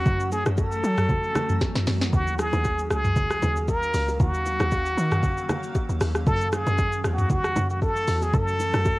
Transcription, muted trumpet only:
0.00 0.32 F#4 loud
0.32 0.44 G#4 loud
0.58 1.83 A4 loud
2.13 2.41 F#4 loud
2.39 2.91 G#4 loud
2.91 3.64 G#4 loud
3.69 4.17 A#4 loud
4.21 5.97 F#4 loud
6.27 6.55 A4 loud
6.53 7.05 G#4 loud
7.14 7.29 F#4 medium
7.31 7.68 F#4 loud
7.71 7.81 F#4 medium
7.83 8.24 A4 loud
8.23 8.36 G#4 loud
8.34 8.99 A4 loud

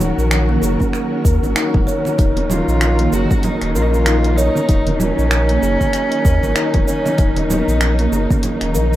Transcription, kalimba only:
0.00 0.30 D#4 loud
0.49 0.56 A#3 medium
0.62 0.79 G#4 medium
0.80 0.93 C#4 medium
1.25 1.42 A#4 medium
1.56 1.73 D#4 medium
1.87 2.17 C#5 loud
2.18 2.80 D#4 loud
2.99 3.07 A#3 medium
3.13 3.30 G#4 medium
3.31 3.43 C#4 medium
3.75 3.92 A#4 medium
4.07 4.24 D#4 medium
4.38 4.67 C#5 loud
4.69 5.30 D#4 medium
5.50 5.57 A#3 medium
5.63 5.80 G#4 medium
5.81 5.93 C#4 medium
6.25 6.42 A#4 medium
6.56 6.73 D#4 medium
6.87 7.17 C#5 medium
7.18 7.79 D#4 loud
7.99 8.06 A#3 medium
8.12 8.30 G#4 medium
8.31 8.43 C#4 medium
8.75 8.92 A#4 medium

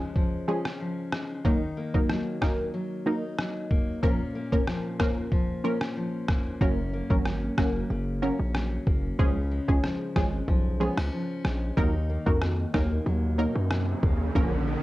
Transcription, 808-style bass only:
6.61 7.02 F#1 loud
7.10 7.49 G#1 medium
7.58 7.84 F#1 medium
7.90 8.31 F#1 loud
8.39 8.78 A#1 loud
8.87 9.13 F#1 loud
9.19 9.60 C#2 loud
9.68 9.81 C#2 medium
10.16 10.43 G#1 medium
10.48 10.89 B1 loud
10.97 11.10 C#2 medium
11.45 11.71 A#1 medium
11.77 12.18 D#2 loud
12.27 12.66 F2 medium
12.74 13.01 D#2 medium
13.06 13.47 D#2 loud
13.56 13.95 F#2 medium
14.03 14.30 D#2 medium
14.35 14.76 A#1 loud

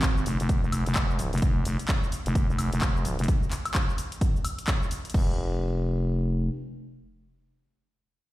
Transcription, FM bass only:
0.00 0.24 G#1 loud
0.26 0.38 F1 loud
0.40 0.61 F1 loud
0.63 0.84 F1 loud
0.86 1.31 F1 loud
1.33 1.41 F1 loud
1.42 1.64 F1 loud
1.66 1.77 F1 loud
2.26 2.47 F1 loud
2.49 2.70 F1 loud
2.73 3.17 F1 loud
3.19 3.27 F1 loud
5.14 6.50 F1 loud

